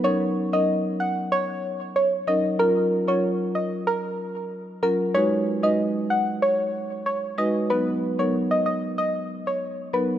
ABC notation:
X:1
M:4/4
L:1/16
Q:1/4=94
K:Blyd
V:1 name="Synth pluck"
c z2 d z2 f z c3 z c z d z | A z2 c z2 d z A3 z3 A z | c z2 d z2 f z c3 z c z d z | B2 z c z d d z d z2 c z2 B z |]
V:2 name="Marimba"
[F,CDA]3 [F,CDA] z8 z2 [F,CDA]2 | [F,CEA]3 [F,CEA] z8 z2 [F,CEA]2 | [G,DFB]3 [G,DFB] z8 z2 [G,DFB]2 | [F,B,DB]3 [F,B,DA] z8 z2 [F,B,DA]2 |]